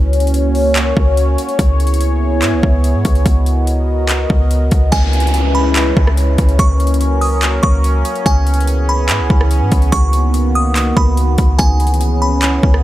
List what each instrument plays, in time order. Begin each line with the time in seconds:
Already playing: 808-style bass C#2, analog synth pad A#3 C#4 F#4 C#5
0.13 closed hi-hat
0.20 closed hi-hat
0.27 closed hi-hat
0.34 closed hi-hat
0.55 open hi-hat
0.76 clap, closed hi-hat
0.97 808-style bass C#2, kick
1.17 closed hi-hat
1.38 closed hi-hat
1.49 closed hi-hat
1.59 808-style bass C#2, analog synth pad B3 E4 G#4, kick, closed hi-hat
1.80 closed hi-hat
1.87 closed hi-hat
1.94 closed hi-hat
2.01 closed hi-hat
2.42 808-style bass G#2, clap, closed hi-hat
2.53 808-style bass C#2
2.63 808-style bass C#2, kick
2.84 closed hi-hat
2.94 808-style bass G#2
3.05 808-style bass C#2, kick, closed hi-hat
3.15 closed hi-hat
3.26 808-style bass C#2, analog synth pad F#4 A#4 D#5, kick, closed hi-hat
3.46 closed hi-hat
3.67 closed hi-hat
4.09 clap, closed hi-hat
4.30 808-style bass C#2, kick
4.51 closed hi-hat
4.71 808-style bass C#2, kick, closed hi-hat
4.92 808-style bass C#2, analog synth pad G#3 C#4 E4 B4, synth bell G#5, kick, closed hi-hat, downlifter
5.13 closed hi-hat
5.20 closed hi-hat
5.27 closed hi-hat
5.34 closed hi-hat
5.55 synth bell B5
5.76 clap, closed hi-hat
5.97 808-style bass C#2, kick
6.07 cross-stick
6.17 closed hi-hat
6.38 808-style bass C#2, kick, closed hi-hat
6.49 closed hi-hat
6.59 808-style bass C#2, analog synth pad F#3 A#3 A#4, synth bell C#6, kick, closed hi-hat
6.80 closed hi-hat
6.87 closed hi-hat
6.94 closed hi-hat
7.01 closed hi-hat
7.21 synth bell D#6, open hi-hat
7.43 clap, closed hi-hat
7.63 808-style bass C#2, synth bell C#6, kick
7.84 closed hi-hat
8.05 closed hi-hat
8.15 closed hi-hat
8.26 808-style bass C#2, analog synth pad E3 B3 G#4, synth bell G#5, kick, closed hi-hat
8.47 closed hi-hat
8.54 closed hi-hat
8.61 closed hi-hat
8.67 closed hi-hat
8.89 synth bell B5
9.09 808-style bass G#2, clap, closed hi-hat
9.20 808-style bass C#2
9.30 808-style bass C#2, kick
9.41 cross-stick
9.51 closed hi-hat
9.61 808-style bass G#2
9.72 808-style bass C#2, kick, closed hi-hat
9.82 closed hi-hat
9.92 808-style bass C#2, analog synth pad D#3 A#3 F#4, synth bell C#6, kick, closed hi-hat
10.13 closed hi-hat
10.34 closed hi-hat
10.55 synth bell D#6
10.76 clap, closed hi-hat
10.97 808-style bass C#2, synth bell B5, kick
11.17 closed hi-hat
11.38 808-style bass C#2, kick, closed hi-hat
11.59 808-style bass C#2, analog synth pad E3 C#4 G#4, synth bell G#5, kick, closed hi-hat
11.80 closed hi-hat
11.87 closed hi-hat
11.94 closed hi-hat
12.01 closed hi-hat
12.22 synth bell B5
12.42 clap, closed hi-hat
12.63 808-style bass C#2, kick
12.74 cross-stick